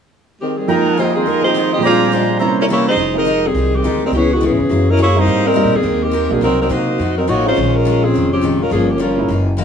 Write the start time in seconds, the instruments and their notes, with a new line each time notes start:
0.41 saxophone section D#3 G#3 C4 G4
0.57 saxophone section D#3 G3 C4 G#4
0.68 upright piano F2 F3 G#3 A#3 D#4 G5, steel-string acoustic guitar F3 A#3 D#4 G#4, saxophone section G#3 D#4 G4 A#4, trumpet section D#5 F5 G5 G#5 A#5
0.97 steel-string acoustic guitar F3 A#3 D#4 G#4, saxophone section G#3 D#4 G4 C5
1.15 saxophone section D#3 G3 C4 G#4, trumpet section G5 A#5 C6
1.26 steel-string acoustic guitar F3 A#3 D#4 G#4, saxophone section G#3 D#4 G4 A#4
1.41 upright piano D#3 A#3 C4 F4 G#4, saxophone section G#3 D#4 G4 C5
1.54 steel-string acoustic guitar F3 A#3 D#4 G#4
1.74 saxophone section C4 G4 G#4 D#5
1.78 upright piano A#2 F3
1.82 steel-string acoustic guitar A#2 G#3 D4 G4, upright piano G#3 C4, saxophone section C4 F4 G#4 D5, trumpet section C5 D5 G5 G#5 A#5
1.87 upright piano G3 D4
2.12 steel-string acoustic guitar A#2 G#3 D4 G4, saxophone section G#3 D4 F4 C5
2.39 steel-string acoustic guitar C3 E3 A#3 C#4, upright piano C3 G3 A#3 C#4 E4, trumpet section C5 C#5 E5 A#5
2.60 saxophone section G3 C#4 E4 A#4
2.69 steel-string acoustic guitar C3 E3 A#3 C#4, saxophone section A#3 E4 G4 C#5
2.89 saxophone section G#3 D#4 G4 C5
2.96 upright bass F1, steel-string acoustic guitar F3 G#3 D#4 G4
3.14 upright piano G#3 C4 D#4 G4
3.18 saxophone section G#3 D#4 G4 A#4
3.25 steel-string acoustic guitar F3 G#3 D#4 G4
3.46 saxophone section D#3 G3 C4 G#4
3.54 upright bass C2, steel-string acoustic guitar F3 G#3 D#4 G4
3.76 saxophone section D#3 G#3 C4 G4
3.83 upright bass D2, steel-string acoustic guitar F3 G#3 D#4 G4, upright piano G#3 C4 D#4 A#4
4.06 saxophone section G3 C4 D#4 A#4
4.11 upright bass C#2, steel-string acoustic guitar C#3 G#3 B3, saxophone section G4
4.15 saxophone section E3 B3 C#4 G#4, steel-string acoustic guitar E4
4.33 saxophone section D#3 G#3 B3 F#4
4.41 steel-string acoustic guitar C#3 G#3 B3 E4
4.46 saxophone section E3 B3 C#4 G#4
4.51 upright bass G#2
4.60 upright bass C#3
4.69 upright bass F#2, steel-string acoustic guitar F#3 A#3 E4 G#4
4.90 saxophone section G#3 C#4 E4 A#4
4.97 steel-string acoustic guitar F#3 A#3 E4 G#4
5.02 saxophone section A#3 E4 G#4 C#5
5.16 upright piano G3 A#3 C4 D#4, saxophone section A#3 D#4 G4 C5
5.25 upright bass G#2, steel-string acoustic guitar G#3 C4 G4 A#4
5.46 saxophone section G3 C4 D#4 A#4
5.54 upright piano G3 A#3 C4 D#4, steel-string acoustic guitar G#3 C4 G4 A#4
5.65 upright bass A#2
5.75 upright bass G2, saxophone section D#3 A#3 C4 G#4
5.83 upright bass D#2, steel-string acoustic guitar G#3 C4 G4 A#4
6.03 saxophone section D#3 A#3 C4 G4
6.11 steel-string acoustic guitar G#3 C4 G4 A#4
6.29 upright bass B1, upright piano F#3 A#3 D4 D#4, saxophone section C4
6.33 saxophone section D#3 A#3 G#4
6.41 upright bass C2, steel-string acoustic guitar C3 F#3 A#3 D#4, saxophone section F#3 C4 D#4 A#4
6.61 saxophone section F#3 C4 D#4 A#4
6.69 steel-string acoustic guitar C3 F#3 A#3 D#4, upright bass C3, saxophone section A#3 D#4 F#4 C5
6.98 upright bass F2, steel-string acoustic guitar F3 A3 D#4 F#4
7.18 saxophone section F#3 C4 D#4 A#4
7.27 upright bass A1, steel-string acoustic guitar F3 A3 D#4 F#4, saxophone section A#3 D#4 F#4 C#5
7.45 upright piano G#3 C4 C#4 D#4, saxophone section G#3 C#4 F4 C5
7.55 upright bass A#1, steel-string acoustic guitar A#2 D#3 G#3 C#4
7.76 saxophone section G#3 C#4 F4 A#4
7.85 steel-string acoustic guitar A#2 D#3 G#3 C#4
8.03 saxophone section F3 C4 C#4 G#4
8.14 upright bass F1, steel-string acoustic guitar A#2 D#3 G#3 C#4
8.33 saxophone section F3 C4 C#4 G4
8.41 steel-string acoustic guitar A#2 D#3 G#3 C#4
8.62 saxophone section G#3 C#4 F4 A#4
8.70 upright bass G1, steel-string acoustic guitar G2 F3 A#3 C#4, saxophone section F3 A#3 C#4 G#4
8.91 saxophone section F3 A#3 C#4 G4
8.98 steel-string acoustic guitar G2 F3 A#3 C#4
9.02 saxophone section G3 C#4 F4 A#4
9.18 upright piano G#3 A#3 D#4 E4
9.28 upright bass F#1, steel-string acoustic guitar F#2 E3 A#3 D#4
9.57 steel-string acoustic guitar F#2 E3 A#3 D#4